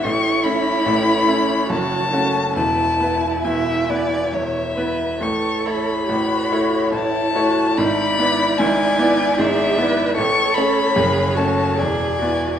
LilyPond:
<<
  \new Staff \with { instrumentName = "Violin" } { \time 3/4 \key a \major \tempo 4 = 72 cis'''8 b''4. a''4 | a''4 gis''4 e''4 | cis'''8 b''4. a''4 | b''4 gis''4 e''4 |
cis'''8 b''4 a''8 gis''4 | }
  \new Staff \with { instrumentName = "Violin" } { \time 3/4 \key a \major cis''2. | b'4 e''8 d''8 cis''8 b'8 | cis''2. | d''2. |
cis''2 d''4 | }
  \new Staff \with { instrumentName = "Cello" } { \time 3/4 \key a \major e'2 fis'8 cis'8 | e'2~ e'8 r8 | a'4 fis'4 e'8 fis'8 | e'2 gis'8 b'8 |
a'4 gis'8 fis'8 gis'8 fis'8 | }
  \new Staff \with { instrumentName = "Grand piano" } { \time 3/4 \key a \major <a,, a,>8 <a cis' e'>8 <a,, a,>8 <a cis' e'>8 <fis,, fis,>8 <a cis' fis'>8 | <e,, e,>8 <b e' b'>8 <e,, e,>8 <b e' b'>8 <e,, e,>8 <b e' b'>8 | <a,, a,>8 <a e' cis''>8 <a,, a,>8 <a e' cis''>8 <a,, a,>8 <a e' cis''>8 | <gis,, gis,>8 <b e' d''>8 <gis,, gis,>8 <b e' d''>8 <gis,, gis,>8 <b e' d''>8 |
<a,, a,>8 <a cis' cis''>8 <fis,, fis,>8 <a cis' cis''>8 <e,, e,>8 <b e' d''>8 | }
>>